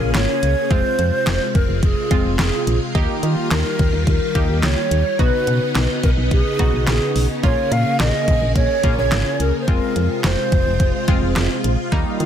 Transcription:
Already playing: C#3 A#3 C#4 F4 G#4 A#4
0.01 A#1
0.14 G#1 C#5, snare, clap, closed hi-hat
0.43 C#2, closed hi-hat
0.70 F1 C3 G#3 C4 F4 C5, kick, closed hi-hat
0.99 F2, closed hi-hat
1.27 F1, snare, clap, closed hi-hat
1.55 F1 A#4, kick, closed hi-hat
1.69 F1
1.83 F1 G#4, kick, closed hi-hat
2.11 F1 G#3 C4 F4, kick, closed hi-hat
2.25 F1
2.39 F1 G#4, snare, clap, closed hi-hat
2.67 A#1, closed hi-hat
2.95 D#2 D#3 G3 A#3 D#4 G4, kick, closed hi-hat
3.23 D#3 F4, closed hi-hat
3.51 D#2 A#4, snare, clap, closed hi-hat
3.79 D#2, kick, closed hi-hat
3.93 D#2
4.07 D#2 A#4, kick, closed hi-hat
4.35 D#2 A#3 D#4 G4, kick, closed hi-hat
4.49 D#2
4.63 C#2 C#5, snare, clap, closed hi-hat
4.91 D#2, closed hi-hat
5.19 B1 C#3 B3 D#4 F#4 B4, kick, closed hi-hat
5.47 B2, closed hi-hat
5.75 B1, snare, clap, closed hi-hat
6.03 B1 A#4, kick, closed hi-hat
6.17 B1
6.31 B1 G#4, kick, closed hi-hat
6.59 B1 B3 D#4 F#4, kick, closed hi-hat
6.73 B1
6.87 A#1 G#4, snare, clap, closed hi-hat
7.15 B1, open hi-hat
7.43 A#1 A#3 C#4 F4 G#4 C#5, kick, closed hi-hat
7.71 A#2 F5, closed hi-hat
7.99 A#1 D#5, snare, clap, closed hi-hat
8.28 A#1, kick, closed hi-hat
8.42 A#1
8.56 A#1 C#5, kick, closed hi-hat
8.84 A#1 A#3 C#4 F4, kick, closed hi-hat
8.98 A#1 C#5
9.12 G#1, snare, clap, closed hi-hat
9.40 C#2 A#4, closed hi-hat
9.61 C5
9.68 F1 C3 G#3 C4 F4 A#4, kick, closed hi-hat
9.96 F2, closed hi-hat
10.24 F1 C5, snare, clap, closed hi-hat
10.52 F1, kick, closed hi-hat
10.66 F1
10.80 F1, kick, closed hi-hat
11.08 F1 G#3 C4 F4, kick, closed hi-hat
11.22 F1
11.36 F1, snare, clap, closed hi-hat
11.64 A#1, closed hi-hat
11.92 D#2 D#3 G3 A#3 D#4, kick, closed hi-hat
12.20 D#3 F4, closed hi-hat

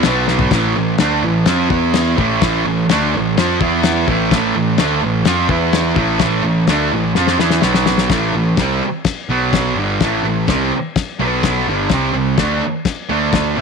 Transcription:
0.03 B1 B2, snare, crash
0.07 F#3 B3
0.28 snare
0.39 floor tom
0.51 A1 A2 E3 A3, kick, snare, crash
0.76 A1 A2 E3
0.98 D2 D3 A3 D4, snare, crash
1.23 A1 A2 E3
1.46 F2 F3 C4 F4, snare, crash
1.69 E2 E3 B3 E4, kick
1.94 snare, crash
2.18 A1 A2 E3 A3, kick
2.41 A1 A2 E3 A3, kick, snare, crash
2.66 A1 A2 E3
2.89 D2 D3 A3 D4, snare, crash
3.15 A1 A2 E3
3.37 F2 F3 C4 F4, snare, crash
3.61 E2 E3 B3 E4, kick
3.83 snare, crash
4.08 A1 A2 E3 A3, kick
4.31 A1 A2 E3 A3, kick, snare, crash
4.55 A1 A2 E3
4.78 D2 D3 A3 D4, snare, crash
5.02 A1 A2 E3
5.25 F2 F3 C4 F4, snare, crash
5.49 E2 E3 B3 E4, kick
5.73 snare, crash
5.96 A1 A2 E3 A3, kick
6.19 A1 A2 E3 A3, kick, snare, crash
6.43 A1 A2 E3
6.67 D2 D3 A3 D4, snare, crash
6.92 A1 A2 E3
7.15 F2 F3 C4 F4, snare
7.27 snare
7.39 E2 E3 B3 E4, snare
7.50 snare
7.62 B1 B2 F#3 B3, snare
7.74 snare
7.86 snare
7.98 snare
8.09 A1 A2 E3 A3, kick, snare, crash
8.33 A1 A2 E3
8.57 C2 C3 G3 C4, kick, snare, crash
9.04 kick, snare, crash
9.29 B1 B2 F#3 B3
9.53 kick, snare, crash
9.75 G1 G2 D3
9.79 G3
10.00 A1 A2 E3 A3, kick, snare, crash
10.23 A1 A2 E3
10.48 C2 C3 G3 C4, kick, snare, crash
10.96 kick, snare, crash
11.19 B1 B2 F#3 B3
11.43 kick, snare, crash
11.67 G1 G2 D3 G3
11.89 C2 C3 G3 C4, kick, snare, crash
12.13 C2 C3 G3
12.37 D2 D3 A3 D4, kick, snare, crash
12.85 kick, snare, crash
13.09 D2 D3 A3 D4
13.33 kick, snare, crash
13.57 A1 A2

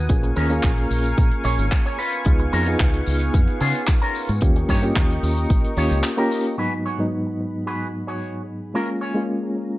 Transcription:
Already playing: G#5
0.09 A#1 A#3 C#4 F4 G#4 A#4 F5 C#6, kick, closed hi-hat, tambourine
0.23 muted clean electric guitar stroke, closed hi-hat
0.36 D#2 C#4 G#4 A#4, open hi-hat, tambourine
0.50 A#3 C#4 F4 G#4, closed hi-hat, tambourine
0.63 A#1, kick, clap, closed hi-hat, tambourine
0.78 closed hi-hat
0.91 A#1, open hi-hat, tambourine
1.04 closed hi-hat, tambourine
1.17 A#2, muted clean electric guitar stroke, kick, closed hi-hat, tambourine
1.31 closed hi-hat
1.44 A#1 C#4 G#4 C#5, open hi-hat, tambourine
1.59 G#1, closed hi-hat, tambourine
1.71 kick, clap, closed hi-hat, tambourine
1.86 C#4 G#4 C#5, closed hi-hat
1.98 B3 C#4 F4 B4 F5, open hi-hat, tambourine
2.12 closed hi-hat, tambourine
2.25 C#2 B3 D#4 F4 G#4, kick, closed hi-hat, tambourine
2.39 muted clean electric guitar stroke, closed hi-hat
2.52 F2 C#4 F4 A#4, open hi-hat, tambourine
2.66 B3 D#4 F4 G#4, closed hi-hat, tambourine
2.80 C#2, kick, clap, closed hi-hat, tambourine
2.94 closed hi-hat
3.06 C#2, open hi-hat, tambourine
3.21 closed hi-hat, tambourine
3.33 F2, muted clean electric guitar stroke, kick, closed hi-hat, tambourine
3.48 closed hi-hat
3.60 C#3 C#4 F4 G#4, open hi-hat, tambourine
3.75 closed hi-hat, tambourine
3.87 kick, clap, closed hi-hat, tambourine
4.02 C#4 F4 A#4, closed hi-hat
4.15 open hi-hat, tambourine
4.29 G#2, closed hi-hat, tambourine
4.41 D#2 A#3 C#4 F4 G4 A#4 D#5 G5 C#6, kick, closed hi-hat, tambourine
4.56 muted clean electric guitar stroke, closed hi-hat
4.69 G2 D#4 G4 C#5, kick, open hi-hat, tambourine
4.82 A#3 C#4 F4 G4, closed hi-hat, tambourine
4.96 D#2, kick, clap, closed hi-hat, tambourine
5.11 closed hi-hat
5.23 D#2, open hi-hat, tambourine
5.37 closed hi-hat, tambourine
5.50 A#1, muted clean electric guitar stroke, kick, closed hi-hat, tambourine
5.64 closed hi-hat
5.77 D#2 A#3 C#4 D#4 F4 G4 C#5, open hi-hat, tambourine
5.91 C#2, closed hi-hat, tambourine
6.03 clap, closed hi-hat, tambourine
6.17 A#3 C#4 D#4 F4 G4 A#4, closed hi-hat
6.31 open hi-hat, tambourine
6.45 closed hi-hat, tambourine
6.57 G#2 F#3 B3 D#4 F#4 G#4 B4 D#5 F#5 B5
6.86 F#4 G#4 C#5
6.98 G#2 F#3 B3 D#4
7.26 muted clean electric guitar stroke
7.39 muted clean electric guitar stroke
7.66 F#4 G#4 B4
8.07 F#4 G#4 C#5
8.74 G#3 A#3 C#4 F4 G#4 A#4 C#5 F5 A#5
9.01 C#4 G#4 C#5
9.15 G#3 A#3 C#4 F4
9.43 muted clean electric guitar stroke
9.56 muted clean electric guitar stroke

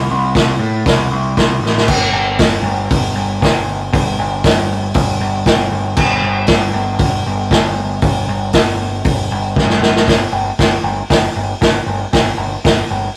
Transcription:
0.11 C2
0.35 C2, kick, snare, open hi-hat
0.59 A2
0.86 C2, kick, snare, open hi-hat
1.11 C2
1.37 C2, kick, snare, open hi-hat
1.62 A1, snare
1.78 snare
1.88 G1, kick, crash
2.12 G1
2.39 G1, kick, snare, open hi-hat
2.63 G1
2.90 G1, kick, open hi-hat
3.15 G1
3.41 G1, kick, snare, open hi-hat
3.93 G1, kick, open hi-hat
4.19 G1
4.44 G1, kick, snare, open hi-hat
4.94 G1, kick, open hi-hat
5.20 G1
5.46 G1, kick, snare, open hi-hat
5.71 G1
5.97 G1, kick, crash
6.22 G1
6.47 G1, kick, snare, open hi-hat
6.73 G1
6.99 G1, kick, open hi-hat
7.26 G1
7.51 G1, kick, snare, open hi-hat
8.02 G1, kick, open hi-hat
8.28 G1
8.53 G1, kick, snare, open hi-hat
9.05 G1, kick, open hi-hat
9.31 G1
9.56 G1, kick, snare
9.70 snare
9.81 G1, snare
9.96 snare
10.08 G1, kick, snare, open hi-hat
10.32 G1
10.59 G1, kick, snare, open hi-hat
10.83 G1
11.10 G1, kick, snare, open hi-hat
11.36 G1
11.61 G1, kick, snare, open hi-hat
11.86 G1
12.13 G1, kick, snare, open hi-hat
12.37 G1
12.64 G1, kick, snare, open hi-hat
12.91 G1

